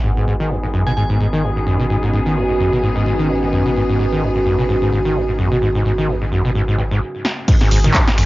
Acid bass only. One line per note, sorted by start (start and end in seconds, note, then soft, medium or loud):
0.04 0.11 G#2 loud
0.17 0.25 G#2 loud
0.27 0.34 G#2 loud
0.40 0.52 D#3 loud
0.50 0.58 F#2 medium
0.63 0.67 G#2 medium
0.74 0.84 F#2 loud
0.87 0.92 B2 loud
0.97 1.04 G#2 loud
1.10 1.18 G#2 loud
1.20 1.27 G#2 loud
1.33 1.45 D#3 loud
1.43 1.51 F#2 medium
1.56 1.60 G#2 medium
1.67 1.77 F#2 loud
1.80 1.85 B2 loud
1.90 1.97 G#2 loud
2.03 2.11 G#2 medium
2.13 2.20 G#2 medium
2.26 2.38 D#3 loud
2.36 2.44 F#2 medium
2.49 2.53 G#2 medium
2.60 2.70 F#2 loud
2.73 2.78 B2 loud
2.83 2.90 G#2 loud
2.96 3.04 G#2 loud
3.06 3.13 G#2 loud
3.19 3.31 D#3 loud
3.29 3.37 F#2 medium
3.42 3.46 G#2 medium
3.53 3.63 F#2 loud
3.66 3.71 B2 loud
3.76 3.83 G#2 loud
3.89 3.97 G#2 medium
3.99 4.06 G#2 medium
4.12 4.24 D#3 loud
4.22 4.30 F#2 medium
4.35 4.39 G#2 medium
4.46 4.56 F#2 loud
4.59 4.64 B2 loud
4.69 4.76 G#2 loud
4.82 4.90 G#2 loud
4.92 4.99 G#2 loud
5.05 5.17 D#3 loud
5.15 5.23 F#2 medium
5.28 5.32 G#2 medium
5.39 5.49 F#2 loud
5.52 5.57 B2 loud
5.62 5.69 G#2 loud
5.75 5.83 G#2 loud
5.85 5.92 G#2 medium
5.98 6.10 D#3 loud
6.09 6.16 F#2 medium
6.22 6.25 G#2 medium
6.32 6.42 F#2 loud
6.45 6.50 B2 loud
6.55 6.62 G#2 loud
6.68 6.76 G#2 loud
6.78 6.83 G#2 medium
6.91 7.00 G#2 loud
7.48 7.55 G#2 loud
7.61 7.70 G#2 loud
7.71 7.78 G#2 loud
7.84 7.96 D#3 loud
7.95 8.02 F#2 medium
8.08 8.11 G#2 medium
8.18 8.26 F#2 loud